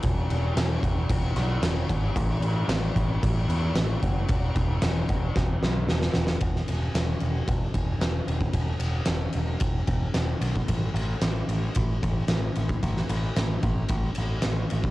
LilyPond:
<<
  \new Staff \with { instrumentName = "Picked electric bass" } { \clef bass \time 4/4 \key a \major \tempo 4 = 112 e,,8 e,,8 e,,8 e,,8 e,,8 b,,8 e,,8 gis,,8 | a,,8 a,,8 a,,8 a,,8 a,,8 e,8 a,,8 fis,,8 | e,,8 e,,8 e,,8 e,,8 e,,8 b,,8 e,,8 e,,8 | e,,8 e,,8 e,,8 e,,8 e,,8 e,,8 e,,8 e,,8 |
e,,8 e,,8 e,,8 e,,8 e,,8 e,,8 e,,8 b,,8 | a,,8 a,,8 a,,8 a,,8 a,,8 a,,8 a,,8 a,,8 | a,,8 a,,8 a,,8 a,,8 a,,8 a,,8 a,,8 a,,8 | }
  \new DrumStaff \with { instrumentName = "Drums" } \drummode { \time 4/4 <cymc bd>8 cymc8 <cymc sn>8 <cymc bd>8 <cymc bd>8 <cymc sn>8 <cymc sn>8 <cymc bd>8 | <cymc bd>8 cymc8 <cymc sn>8 <cymc bd>8 <cymc bd>8 cymc8 <cymc sn>8 <cymc bd>8 | <cymc bd>8 <cymc bd>8 <cymc sn>8 <cymc bd>8 <bd sn>8 sn8 sn16 sn16 sn16 sn16 | <bd cymr>16 sn16 cymr8 <cymr sn>8 cymr8 <bd cymr>8 <bd cymr>8 <cymr sn>8 cymr16 bd16 |
<bd cymr>8 cymr8 <cymr sn>8 cymr8 <bd cymr>8 <bd cymr>8 <cymr sn>8 cymr16 bd16 | <bd cymr>8 cymr8 <cymr sn>8 cymr8 <bd cymr>8 <bd cymr>8 <cymr sn>8 cymr16 bd16 | <bd cymr>16 sn16 cymr8 <cymr sn>8 <bd cymr>8 <bd cymr>8 cymr8 <cymr sn>8 cymr16 bd16 | }
>>